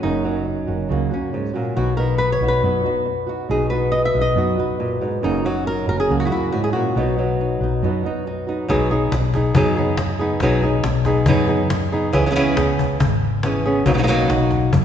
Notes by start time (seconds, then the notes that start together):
Already playing: F#3
0.02 F#1 F#2 C#3 F#3 A#3 C#4 D#4 F#4
0.24 F#3 A#3 C#4 F#4
0.45 muted nylon-string guitar stroke
0.67 F#1 A#3 C#4 F#4
0.88 C#2 C#3 F#3 A#3 C#4 F#4
1.11 A#3 C#4 F#4
1.32 G#2, muted nylon-string guitar stroke
1.54 A#2 A#3 C#4 F#4
1.75 B1 B2 F#3 B3 D#4 F#4
1.97 B3 D#4 F#4 A#4
2.18 B4, muted nylon-string guitar stroke
2.32 C#5
2.40 B1 B3 D#4 F#4
2.48 B4
2.62 F#2 B2 F#3 B3 D#4 F#4
2.84 B3 D#4 F#4
3.05 muted nylon-string guitar stroke
3.27 B3 D#4 F#4
3.49 B1 B2 F#3 B3 D#4 F#4 G#4
3.70 B3 D#4 F#4 B4
3.92 D#5, muted nylon-string guitar stroke
4.05 E5
4.14 B1 B3 D#4 F#4
4.21 D#5
4.35 F#2 B2 F#3 B3 D#4 F#4
4.57 B3 D#4 F#4 B4
4.79 A#2, muted nylon-string guitar stroke
5.01 G#2 B3 D#4 F#4
5.22 F#1 F#2 C#3 F#3 A#3 C#4 D#4 F#4
5.44 F#3 A#3 C#4 F#4
5.66 A#4, muted nylon-string guitar stroke
5.87 F#1 A#3 C#4 F#4 A#4
6.00 G#4
6.09 C#2 C#3 F#3 A#3 C#4 F#4
6.20 F#4
6.25 E4 F#4
6.31 A#3 C#4 E4 F#4
6.52 G#2 F#4, muted nylon-string guitar stroke
6.64 G#4
6.73 A#2 A#3 C#4 F#4
6.95 B1 B2 F#3 B3 D#4 F#4
6.99 D#4
7.17 F#3 B3 D#4 F#4
7.39 D#4, muted nylon-string guitar stroke
7.61 B1 B3 D#4 F#4
7.83 F#2 B2 F#3 B3 D#4 F#4
8.03 B3 D#4 F#4
8.26 D#4, muted nylon-string guitar stroke
8.47 B3 D#4 F#4
8.68 B1 B2 F#3 B3 D#4 G#4, cajon bass, cajon slap
8.91 B3 D#4 G#4, cajon slap
9.12 B1, muted nylon-string guitar stroke, cajon slap
9.34 B3 D#4 G#4, cajon bass, cajon slap
9.54 F#2 B2 F#3 B3 D#4 G#4, cajon bass
9.76 B3 D#4 G#4
9.97 muted nylon-string guitar stroke, cajon bass, cajon slap
10.19 B3 D#4 G#4
10.40 B1 B2 F#3 B3 D#4 G#4, cajon bass, cajon slap
10.62 B3 D#4 G#4, cajon slap
10.84 B1, muted nylon-string guitar stroke, cajon slap
11.05 B3 D#4 G#4, cajon bass, cajon slap
11.26 F#2 B2 F#3 B3 D#4 G#4, cajon bass
11.47 B3 D#4 G#4
11.70 muted nylon-string guitar stroke, cajon slap
11.92 B3 D#4 G#4
12.13 C#2 C#3 E3 B3 C#4 G#4, cajon bass, cajon slap
12.26 E3 B3 C#4 G#4
12.31 E3 B3 C#4 G#4
12.36 C#3 E3 B3 C#4 G#4
12.57 C#2 B3 C#4 G#4, cajon slap
12.79 cajon bass
13.00 G#1, muted nylon-string guitar stroke, cajon bass
13.43 E3 B3 C#4 G#4, cajon slap
13.66 B3 C#4 G#4
13.86 B1 B2 F#3 A#3 D#4 F#4, cajon bass
13.94 F#3 A#3 D#4 F#4
13.98 F#3 A#3 D#4 F#4
14.03 F#3 A#3 D#4 F#4
14.07 B2 F#3 A#3 D#4 F#4
14.29 B1 A#3 D#4 F#4, cajon slap
14.51 cajon bass, cajon slap
14.72 F#2, muted nylon-string guitar stroke, cajon bass